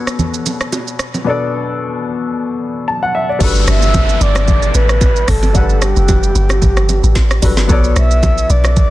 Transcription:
Already playing: B2 B3 D4 A4 C#5
0.07 cross-stick, shaker
0.19 low conga, shaker
0.34 shaker
0.46 low bongo, shaker
0.61 cross-stick, shaker
0.72 high bongo, shaker
0.88 shaker
0.99 cross-stick, shaker
1.14 low bongo, shaker
1.24 B2 B3 D4 A4
1.30 D5
2.88 A5
3.03 F#5
3.15 E5
3.29 D5
3.39 G1 G3 D4 F#4 A4, kick, crash, downlifter, low conga, shaker
3.44 B4
3.55 shaker
3.67 G1 E5, cross-stick, shaker
3.82 shaker
3.94 kick, high bongo, low conga, shaker
4.09 shaker
4.21 G1 D5, shaker
4.35 cross-stick, high bongo, shaker
4.48 kick, low conga, shaker
4.62 shaker
4.74 A1 B4, low bongo, shaker
4.89 cross-stick, shaker
5.01 kick, high bongo, shaker
5.16 shaker
5.28 G1 A4, kick, cross-stick, open hi-hat, low bongo, shaker
5.43 high bongo, low bongo, shaker
5.53 G1 G3 D4 A4 F#5, kick, low conga, shaker
5.58 B4
5.70 shaker
5.82 G4, cross-stick, shaker
5.96 F#1, shaker
6.08 kick, high bongo, low conga, shaker
6.23 shaker
6.35 G1, shaker
6.49 cross-stick, high bongo, shaker
6.62 G1, kick, low conga, shaker
6.77 cross-stick, shaker
6.89 low bongo, shaker
7.03 A1, shaker
7.15 kick, snare, high bongo, shaker
7.31 cross-stick, shaker
7.42 G1 G3 D4 F#4 A4 B4, kick, open hi-hat, low bongo, shaker
7.57 snare, high bongo, low bongo, shaker
7.67 B1 B3 F#4 A4 C#5, kick, low conga, shaker
7.72 D5
7.84 shaker
7.96 B1 E5, cross-stick, shaker
8.11 shaker
8.23 kick, high bongo, low conga, shaker
8.38 shaker
8.50 B1 D5, shaker
8.64 cross-stick, high bongo, shaker
8.76 D5, kick, low conga, shaker

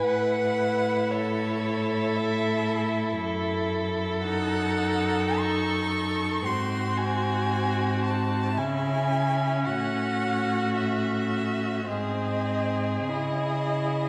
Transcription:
Already playing: B4
0.05 A2 E4 F#5
1.11 A4 C#5
2.16 E5
3.17 F#2 A4
4.23 D#4 F#5
5.39 C#6
6.45 G#2 C4 F#4 C6
6.98 G#5
8.03 A5
8.57 C#3 C#4 E4 G#5
9.65 A2 F#4 F#5
10.75 E5
11.87 G#2 C4 G#4 D#5
13.08 C#3 E4 D#5

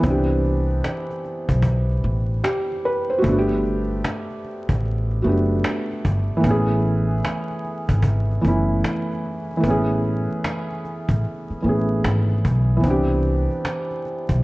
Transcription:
Already playing: E3
0.00 C2 B3 C4, cajon bass
0.07 D4 G4
0.30 cajon slap
0.45 cajon slap
0.71 cajon slap
0.84 cajon slap
1.10 cajon slap
1.24 cajon slap
1.49 B1, cajon bass
1.62 cajon bass
1.91 cajon slap
2.04 A1, cajon slap
2.44 G4, cajon slap
2.72 cajon slap
2.85 B4, cajon slap
3.10 C5
3.18 A3 F#4
3.24 G1 B3, cajon bass
3.28 D4 F#4
3.38 G4
3.50 cajon slap
3.65 cajon slap
3.91 cajon slap
4.04 cajon slap
4.31 cajon slap
4.45 cajon slap
4.69 A1, cajon bass
4.85 cajon slap
5.11 cajon slap
5.22 F#1 A3 B3 F#4, cajon slap
5.27 D4 G4
5.64 cajon slap
5.92 cajon slap
6.05 G1, cajon bass
6.37 E3 A3
6.43 A1 B3 C#4, cajon bass
6.50 G#4
6.70 cajon slap
6.85 cajon slap
7.11 cajon slap
7.25 cajon slap
7.51 cajon slap
7.65 cajon slap
7.89 G#1, cajon bass
8.03 cajon bass
8.31 cajon slap
8.41 F#1 E3 A3 B3, cajon bass
8.46 C#4 E4
8.84 cajon slap
9.12 cajon slap
9.25 cajon slap
9.51 cajon slap
9.57 E3 A3
9.64 A1 B3 C#4, cajon bass
9.70 G#4
9.90 cajon slap
10.05 cajon slap
10.31 cajon slap
10.44 cajon slap
10.71 cajon slap
10.85 cajon slap
11.09 A1, cajon bass
11.25 cajon slap
11.50 muted upright bass stroke, cajon slap
11.62 A1 E3 A3 B3, cajon slap
11.67 C#4 G#4
12.04 G#1, cajon slap
12.32 cajon slap
12.45 B1, cajon bass
12.77 E3 B3
12.84 C2 C4 D4, cajon bass
12.90 G4
13.10 cajon slap
13.25 cajon slap
13.51 cajon slap
13.65 cajon slap
13.91 cajon slap
14.05 cajon slap
14.29 B1, cajon bass

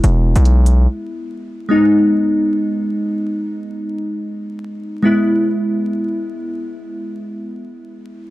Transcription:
Already playing: G#3 B3 E4
0.04 E1, closed hi-hat
0.36 B1, closed hi-hat
0.45 closed hi-hat
0.66 closed hi-hat
1.69 G#3 B3 D#4
5.03 G#3 B3 E4

